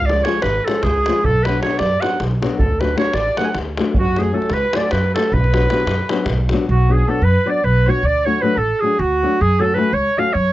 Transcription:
Already playing: C#2 F5
0.00 davul high
0.06 F3 D5, davul high
0.10 G#3 C#4 F4 D5
0.24 F3 G#3 C#4 F4 C#5, davul high
0.29 C#5
0.34 davul high
0.42 G#1 B4, davul high
0.56 davul high
0.65 F3 G#3 C#4 F4 A4, davul high
0.75 davul high
0.83 C#2 G#4, davul high, davul low
0.94 davul high
1.06 F3 G#3 C#4 F4, davul high
1.15 davul high
1.24 B1 A4, davul low
1.43 F#3 B3 B4, davul high
1.48 D4 F#4
1.61 F#3 B3 D4 C#5, davul high
1.65 F#4
1.71 davul high
1.79 F#2 D5, davul high
2.01 F#3 B3 D4 F#4 F#5, davul high
2.20 B1, davul high
2.31 davul high
2.42 F#3 B3 D4 F#4, davul high
2.58 D2 A4, davul low
2.80 F#3 A3 D4 F#4 B4, davul high
2.96 F#3 A3 D4 F#4 C#5, davul high
3.06 davul high
3.13 A1 D5, davul high
3.37 F#3 A3 D4 F#4 F#5, davul high
3.44 F#5 G#5
3.50 F#5
3.55 D2, davul high
3.65 davul high
3.77 F#3 A3 D4 F#4, davul high
3.94 F#2, davul low
3.99 F#4
4.16 F#3 A3 C#4 F#4 G#4, davul high
4.22 G#4
4.33 F#3 A3 C#4 F#4 A4
4.42 davul high
4.50 C#2 B4, davul high
4.73 F#3 A3 C#4 F#4 D5, davul high
4.91 F#2 B4, davul high
5.04 davul high
5.14 F#3 A3 C#4 F#4 A4, davul high
5.32 B1 B4, davul low
5.44 davul high
5.53 F#3 B3 D4 F#4, davul high
5.62 davul high
5.70 F#3 B3 D4 F#4, davul high
5.80 davul high
5.86 F#2, davul high
5.99 davul high
6.09 F#3 B3 D4 F#4, davul high
6.18 davul high
6.26 B1, davul high, davul low
6.38 davul high
6.49 F#3 B3, davul high
6.54 D4 F#4
6.59 davul high
6.69 B1 F#4
6.88 F#3 B3 D4 F#4 G#4
6.94 G#4
7.07 F#3 B3 D4 F#4 A4
7.22 F#2 B4
7.46 F#3 B3 D4 F#4 D5
7.50 D5
7.64 B1 B4
7.87 F#3 B3 D4 F#4 C#5
8.03 D2 D5
8.24 F#3 A3 D4 F#4 C#5
8.41 F#3 A3 D4 F#4 B4
8.56 A1 A4
8.80 F#3 A3 G#4
8.84 D4 F#4
8.99 D2 F#4
9.23 F#3 A3 D4 F#4
9.41 F#2 G#4
9.59 F#3 A3 C#4 F#4 A4
9.64 A4
9.75 F#3 A3 C#4 F#4 B4
9.79 B4
9.93 C#2 C#5
10.18 F#3 A3 C#4 F#4 F5
10.33 F#2 C#5

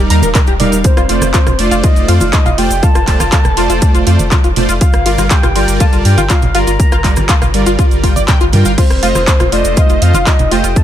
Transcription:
0.10 D#2 G3 D#4 A#4 F5 A#5, open hi-hat
0.22 D#1 A#4, closed hi-hat, high conga, cabasa
0.35 A#4, kick, clap, closed hi-hat, low conga, cabasa
0.47 D#1 G4, closed hi-hat, high bongo, cabasa
0.60 D#1 G3 D#4 A#4 D5 F5, open hi-hat, low conga
0.72 D#1, closed hi-hat, high bongo, cabasa
0.84 C5, kick, closed hi-hat, cabasa
0.97 F1 F4, cross-stick, closed hi-hat, cabasa
1.09 F1 A3 F4 C5 D5, open hi-hat
1.21 F1, cross-stick, closed hi-hat, high conga, cabasa
1.34 F4, kick, clap, closed hi-hat, cabasa
1.47 F1 F4, cross-stick, closed hi-hat, low conga, cabasa
1.59 F1 A3 F4 C5 D5, open hi-hat
1.71 F1 F4, closed hi-hat, cabasa
1.84 F4 D#5, kick, closed hi-hat, cabasa
1.96 F1, closed hi-hat, cabasa
2.08 F2 A3 F4 C5 D5 F5, open hi-hat
2.20 F1 F4, closed hi-hat, high bongo, high conga, cabasa
2.33 D#5, kick, clap, closed hi-hat, cabasa
2.46 F1 F4, closed hi-hat, high bongo, low conga, cabasa
2.58 F1 A3 F4 C5 D5 G5, open hi-hat
2.71 F1, closed hi-hat, cabasa
2.83 F4 A5, kick, closed hi-hat, cabasa
2.95 F1 F4, cross-stick, closed hi-hat, cabasa
3.07 F1 A3 F4 C5 D5, kick, clap, open hi-hat
3.20 F1 F4, cross-stick, closed hi-hat, high conga, cabasa
3.32 F4, kick, clap, closed hi-hat, cabasa
3.44 F1, cross-stick, closed hi-hat, low conga, cabasa
3.57 F1 A3 F4 C5 D5, open hi-hat
3.70 F1 F4, closed hi-hat, cabasa
3.82 kick, closed hi-hat, cabasa
3.95 F1 F4, closed hi-hat, cabasa
4.07 F2 A3 F4 C5 D5, open hi-hat
4.19 F1, closed hi-hat, high conga, cabasa
4.31 F4, kick, clap, closed hi-hat, low conga, cabasa
4.44 F1 F4, closed hi-hat, high bongo, cabasa
4.56 F1 A3 F4 C5 D5, open hi-hat, low conga
4.69 F1 F4, closed hi-hat, high bongo, cabasa
4.81 F4 F5, kick, closed hi-hat, cabasa
4.93 G1, cross-stick, closed hi-hat, cabasa
5.06 G1 G3 F4 A#4 D5, open hi-hat
5.18 G1 F4, cross-stick, closed hi-hat, high conga, cabasa
5.30 G5, kick, clap, closed hi-hat, cabasa
5.43 G1 F4, cross-stick, closed hi-hat, low conga, cabasa
5.56 G1 G3 F4 A#4 D5, open hi-hat
5.68 G1, closed hi-hat, cabasa
5.80 F4 A5, kick, closed hi-hat, cabasa
5.93 G1 F4, closed hi-hat, cabasa
6.05 G2 G3 F4 A#4 D5 G5, open hi-hat
6.18 G1 F4, closed hi-hat, high bongo, high conga, cabasa
6.30 F4 F5, kick, clap, closed hi-hat, cabasa
6.42 G1, closed hi-hat, high bongo, low conga, cabasa
6.55 G1 G3 F4 A#4 D5 A#5, open hi-hat
6.67 G1 F4, closed hi-hat, cabasa
6.80 kick, closed hi-hat, cabasa
6.92 G1 F4, cross-stick, closed hi-hat, cabasa
7.04 G1 G3 F4 A#4 D5, kick, clap, open hi-hat
7.16 G1, cross-stick, closed hi-hat, high conga, cabasa
7.28 F4, kick, clap, closed hi-hat, cabasa
7.42 G1 F4, cross-stick, closed hi-hat, low conga, cabasa
7.54 G1 G3 F4 A#4 D5, open hi-hat
7.66 G1 F4, closed hi-hat, cabasa
7.79 F4, kick, closed hi-hat, cabasa
7.91 G1, closed hi-hat, cabasa
8.03 G1 G3 F4 A#4 G5, kick, open hi-hat
8.16 G1 D5, closed hi-hat, high conga, cabasa
8.28 G5, kick, clap, closed hi-hat, low conga, cabasa
8.41 G1 F4, closed hi-hat, high bongo, cabasa
8.53 G2 G3 F4 A#4 G5, open hi-hat, high conga, low conga
8.65 G1 F5, closed hi-hat, high bongo, cabasa
8.78 F4 C5, kick, closed hi-hat, crash, cabasa
8.90 F1, cross-stick, closed hi-hat, cabasa
9.03 F1 A3 F4 C5 D#5, open hi-hat
9.15 F1 F4, cross-stick, closed hi-hat, high conga, cabasa
9.27 kick, clap, closed hi-hat, cabasa
9.40 F1 F4, cross-stick, closed hi-hat, low conga, cabasa
9.52 F1 A3 F4 C5 D5 D#5, open hi-hat
9.64 F1, closed hi-hat, cabasa
9.77 F4 D#5, kick, closed hi-hat, cabasa
9.89 F1 F4, closed hi-hat, cabasa
10.02 F2 A3 F4 C5 D#5 F5, open hi-hat
10.14 F1 F4, closed hi-hat, high bongo, high conga, cabasa
10.27 F4 D#5, kick, clap, closed hi-hat, cabasa
10.39 F1, closed hi-hat, high bongo, low conga, cabasa
10.51 F1 A3 F4 C5 D#5 G5, open hi-hat
10.64 F1 F4, closed hi-hat, cabasa
10.76 A5, kick, closed hi-hat, cabasa

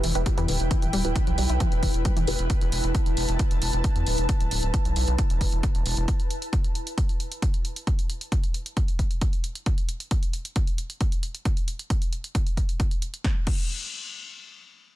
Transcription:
Already playing: E4 B4 G5, impact
0.04 E1 E3, open hi-hat
0.15 E1 E4 G4 B4, closed hi-hat
0.26 G3, kick, closed hi-hat
0.38 E2 E3 E4 G4 B4, closed hi-hat
0.48 D1 D3, open hi-hat
0.60 E1, closed hi-hat
0.71 E3, kick, closed hi-hat
0.82 D1 E3, closed hi-hat
0.93 D1 G3, open hi-hat
1.05 D1 E4 G4 B4, closed hi-hat
1.16 E3, kick, closed hi-hat
1.27 B1 F3, closed hi-hat
1.38 B1 G3, open hi-hat
1.49 B1 E4, closed hi-hat
1.60 F3, kick, closed hi-hat
1.72 E1, closed hi-hat
1.83 E1 E3, kick, open hi-hat
1.94 E1, closed hi-hat
2.05 G3, kick, closed hi-hat
2.17 E1 E3, closed hi-hat
2.27 E1 D3 E4 G4 B4 A5, open hi-hat
2.39 E1, closed hi-hat
2.50 kick, closed hi-hat
2.61 E1, closed hi-hat
2.72 E1, open hi-hat
2.84 E1, closed hi-hat
2.95 kick, closed hi-hat
3.06 E1, closed hi-hat
3.17 E1, open hi-hat
3.29 E1, closed hi-hat
3.39 kick, closed hi-hat
3.51 E1, closed hi-hat
3.62 E1, open hi-hat
3.73 E1, closed hi-hat
3.84 kick, closed hi-hat
3.96 E2, closed hi-hat
4.07 D1, open hi-hat
4.18 E1, closed hi-hat
4.29 kick, closed hi-hat
4.40 D1, closed hi-hat
4.51 D1, open hi-hat
4.63 D1, closed hi-hat
4.74 kick, closed hi-hat
4.85 B1, closed hi-hat
4.96 B1, open hi-hat
5.08 B1, closed hi-hat
5.18 kick, closed hi-hat
5.30 E1, closed hi-hat
5.41 E1, kick, open hi-hat
5.52 E1, closed hi-hat
5.63 kick, closed hi-hat
5.75 E1, closed hi-hat
5.86 E1, open hi-hat
5.97 E1, closed hi-hat
6.08 kick, closed hi-hat
6.20 closed hi-hat
6.30 closed hi-hat
6.42 closed hi-hat
6.53 kick, closed hi-hat
6.64 closed hi-hat
6.75 closed hi-hat
6.87 closed hi-hat
6.98 kick, closed hi-hat
7.09 closed hi-hat
7.20 closed hi-hat
7.32 closed hi-hat
7.42 kick, closed hi-hat
7.54 closed hi-hat
7.65 closed hi-hat
7.76 closed hi-hat
7.87 kick, closed hi-hat
7.99 closed hi-hat
8.10 closed hi-hat
8.21 closed hi-hat
8.32 kick, closed hi-hat
8.44 closed hi-hat
8.54 closed hi-hat
8.66 closed hi-hat
8.77 kick, closed hi-hat
8.88 closed hi-hat
8.99 kick, closed hi-hat
9.11 closed hi-hat
9.21 kick, closed hi-hat
9.33 closed hi-hat
9.44 closed hi-hat
9.55 closed hi-hat
9.66 kick, closed hi-hat
9.78 closed hi-hat
9.89 closed hi-hat
10.00 closed hi-hat
10.11 kick, closed hi-hat
10.23 closed hi-hat
10.33 closed hi-hat
10.45 closed hi-hat
10.56 kick, closed hi-hat
10.67 closed hi-hat
10.78 closed hi-hat
10.90 closed hi-hat
11.01 kick, closed hi-hat
11.12 closed hi-hat
11.23 closed hi-hat
11.35 closed hi-hat
11.45 kick, closed hi-hat
11.57 closed hi-hat
11.68 closed hi-hat
11.79 closed hi-hat
11.90 kick, closed hi-hat
12.02 closed hi-hat
12.13 closed hi-hat
12.24 closed hi-hat
12.35 kick, closed hi-hat
12.47 closed hi-hat
12.57 kick, closed hi-hat
12.69 closed hi-hat
12.80 kick, closed hi-hat
12.91 closed hi-hat
13.02 closed hi-hat
13.14 closed hi-hat
13.24 kick, snare
13.47 kick, crash

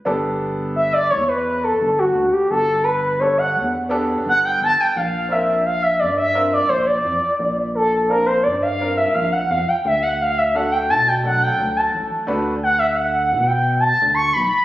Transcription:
0.05 G1 B3 D4 G4 A4
0.76 E5
0.93 D5
1.10 E2 C#5
1.28 B4
1.64 A4
1.81 G1
1.99 F#4
2.16 D2
2.33 G4
2.50 G1 A4
2.84 B4
3.20 B3 D4 G4 A4 C#5
3.38 F#5
3.55 E2
3.89 B3 D4 G4 A4
4.26 G1 F#5
4.45 G5
4.61 G1 A5
4.80 G5
4.96 A#1 F5
5.28 C4 D4 F4 A#4 E5
5.65 F5
5.82 E5
5.99 G2 D5
6.17 E5
6.34 C4 D4 F4 A#4
6.53 D5
6.69 A#1 C5
6.86 D5
7.05 F2
7.39 A#1
7.75 A4
8.08 C4 D4 F4 A#4
8.26 C5
8.43 G2 D5
8.62 F5
8.80 C4 D4 F4 A#4
8.97 E5
9.14 A#1 F5
9.32 F#5
9.50 F2 F5
9.68 G5
9.85 D2 E5
10.02 F#5
10.21 F5
10.38 E5
10.55 A3 D4 F#4 A4 F#5
10.72 G5
10.89 B2 A5
11.08 G5
11.23 F#3 A3 D4 A4 F#5
11.43 G5
11.58 D2
11.77 A5
11.94 A1
12.27 D2 A3 D4 F#4 B4
12.63 F#5
12.79 E5
12.95 F#5
13.32 B2
13.47 G5
13.80 A5
14.02 D2
14.14 C#6
14.33 B1 B5

